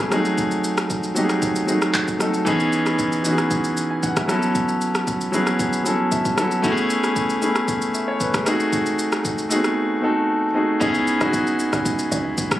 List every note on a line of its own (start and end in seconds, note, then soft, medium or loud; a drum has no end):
0.00 0.11 A3 loud
0.00 0.14 B3 loud
0.00 0.14 C#4 loud
0.00 0.14 E4 loud
0.00 0.13 G#4 loud
0.10 0.95 F#3 medium
0.10 0.95 A3 medium
0.10 0.95 C4 medium
0.10 0.96 D#4 medium
0.10 0.96 G#4 loud
0.10 cross-stick medium
0.10 shaker medium
0.25 shaker medium
0.38 kick loud
0.38 shaker medium
0.51 shaker medium
0.64 shaker medium
0.77 cross-stick loud
0.77 shaker soft
0.90 kick medium
0.90 shaker medium
1.04 shaker soft
1.15 1.57 F#3 medium
1.15 1.58 A3 medium
1.15 1.58 C4 medium
1.15 1.59 D#4 medium
1.15 1.23 G4 medium
1.15 shaker medium
1.24 1.62 G#4 medium
1.29 cross-stick medium
1.29 shaker soft
1.42 kick loud
1.42 shaker medium
1.56 shaker medium
1.67 2.10 F#3 medium
1.67 2.10 A3 medium
1.67 2.10 C4 medium
1.67 2.11 D#4 medium
1.67 2.11 G#4 medium
1.67 shaker medium
1.82 cross-stick loud
1.82 shaker medium
1.94 kick medium
1.94 clap medium
1.94 shaker medium
2.08 kick medium
2.08 shaker medium
2.19 2.41 F#3 medium
2.19 2.41 A3 medium
2.19 2.41 C4 medium
2.19 2.42 D#4 medium
2.19 2.42 A4 medium
2.19 cross-stick medium
2.19 shaker medium
2.34 shaker medium
2.45 3.09 E3 loud
2.45 3.09 B3 loud
2.45 3.09 C#4 loud
2.45 3.10 D#4 loud
2.45 3.10 G#4 loud
2.45 kick loud
2.45 shaker medium
2.60 shaker medium
2.73 shaker medium
2.86 cross-stick medium
2.86 shaker soft
2.99 kick medium
2.99 shaker medium
3.12 shaker soft
3.23 3.66 E3 medium
3.23 3.67 B3 medium
3.23 3.67 C#4 medium
3.23 3.67 D#4 medium
3.23 3.32 F#4 medium
3.23 shaker medium
3.33 3.71 G#4 medium
3.38 cross-stick medium
3.38 shaker soft
3.51 kick loud
3.51 shaker medium
3.64 shaker medium
3.77 shaker medium
3.91 4.02 G#5 medium
4.03 4.16 F#5 medium
4.03 kick medium
4.03 shaker medium
4.17 4.41 E5 medium
4.17 kick loud
4.17 cross-stick loud
4.17 shaker medium
4.27 5.12 F#3 medium
4.27 5.12 B3 medium
4.27 5.13 C#4 medium
4.27 5.13 E4 medium
4.27 5.13 A4 loud
4.27 cross-stick medium
4.27 shaker medium
4.42 shaker medium
4.55 kick loud
4.55 shaker medium
4.69 shaker medium
4.81 shaker medium
4.95 cross-stick loud
4.95 shaker soft
5.07 kick medium
5.07 shaker medium
5.21 shaker soft
5.32 5.75 F#3 medium
5.32 5.75 B3 medium
5.32 5.76 C#4 medium
5.32 5.76 E4 medium
5.32 5.76 G#4 medium
5.32 shaker medium
5.47 cross-stick medium
5.47 shaker soft
5.59 kick loud
5.59 shaker medium
5.73 shaker medium
5.84 6.27 F#3 medium
5.84 6.27 B3 medium
5.84 6.28 C#4 medium
5.84 6.28 E4 medium
5.84 6.29 A4 medium
5.84 shaker medium
6.12 6.60 E5 medium
6.12 kick medium
6.12 shaker medium
6.25 kick loud
6.25 shaker medium
6.36 6.58 F#3 medium
6.36 6.58 B3 medium
6.36 6.59 C#4 medium
6.36 6.59 E4 medium
6.36 6.60 A4 medium
6.36 cross-stick loud
6.36 shaker medium
6.51 shaker medium
6.62 7.26 A3 loud
6.62 7.27 B3 loud
6.62 7.27 C#4 loud
6.62 7.27 E4 loud
6.62 6.71 F#4 loud
6.62 kick loud
6.62 shaker medium
6.72 7.31 G#4 loud
6.77 shaker medium
6.90 shaker medium
7.04 cross-stick medium
7.04 shaker soft
7.16 kick medium
7.16 shaker medium
7.30 shaker soft
7.41 7.84 A3 medium
7.41 7.84 B3 medium
7.41 7.84 C#4 medium
7.41 7.85 E4 medium
7.41 7.85 G#4 medium
7.41 shaker medium
7.56 cross-stick medium
7.56 shaker soft
7.68 kick loud
7.68 shaker medium
7.82 shaker medium
7.94 8.07 E5 medium
7.94 shaker medium
8.08 8.20 C#5 medium
8.20 8.33 B4 medium
8.20 kick medium
8.20 shaker medium
8.34 8.47 G#4 medium
8.34 kick loud
8.34 cross-stick loud
8.34 shaker medium
8.45 9.29 A3 medium
8.45 9.30 C4 medium
8.45 9.30 D#4 medium
8.45 9.31 F#4 medium
8.45 9.31 G#4 loud
8.45 cross-stick loud
8.45 shaker medium
8.60 shaker medium
8.73 kick loud
8.73 shaker medium
8.86 shaker medium
8.99 shaker medium
9.12 cross-stick medium
9.12 shaker soft
9.25 kick medium
9.25 shaker medium
9.38 shaker soft
9.49 9.92 A3 medium
9.49 9.57 B3 medium
9.49 9.93 D#4 medium
9.49 9.93 F#4 medium
9.49 9.94 G#4 medium
9.49 shaker medium
9.56 9.96 C4 medium
9.64 cross-stick medium
9.64 shaker soft
10.01 10.44 A3 medium
10.01 10.45 C4 medium
10.01 10.45 D#4 medium
10.01 10.46 F#4 medium
10.01 10.46 A4 medium
10.54 10.75 A3 medium
10.54 10.76 C4 medium
10.54 10.76 D#4 medium
10.54 10.77 F#4 medium
10.54 10.77 G#4 medium
10.80 11.18 C#2 loud
10.80 11.12 B3 loud
10.80 11.12 C#4 loud
10.80 11.13 D#4 loud
10.80 11.13 E4 loud
10.80 11.13 G#4 loud
10.80 kick loud
10.80 shaker medium
10.95 shaker medium
11.07 shaker medium
11.19 11.48 B1 loud
11.19 12.03 B3 medium
11.19 12.04 C#4 medium
11.19 12.04 D#4 medium
11.19 12.05 E4 medium
11.19 12.05 F#4 loud
11.19 cross-stick medium
11.19 shaker soft
11.33 kick medium
11.33 shaker medium
11.47 11.71 C#2 medium
11.47 shaker soft
11.59 shaker loud
11.73 11.97 C#2 medium
11.73 cross-stick medium
11.73 shaker soft
11.85 kick loud
11.85 shaker medium
11.99 shaker medium
12.12 12.60 C#2 loud
12.12 shaker medium
12.38 kick medium
12.38 shaker medium
12.51 kick loud
12.51 cross-stick loud
12.51 shaker medium